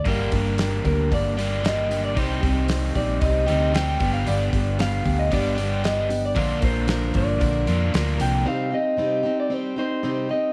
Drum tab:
HH |oooooooo|oooooooo|oooooooo|oooooooo|
SD |--o---o-|--o---o-|--o---o-|--o---o-|
BD |oo-oo---|oo-oo--o|-o-oo---|oo-oo---|

HH |--------|
SD |--------|
BD |--------|